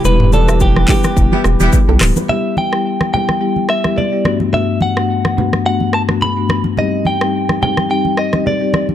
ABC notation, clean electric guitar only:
X:1
M:4/4
L:1/16
Q:"Swing 16ths" 1/4=107
K:Em
V:1 name="Clean electric guitar"
B2 A2 G2 G8 z2 | e2 g4 g4 e2 d3 z | e2 f6 f2 a2 b3 z | _e2 g4 g2 g2 e2 d3 z |]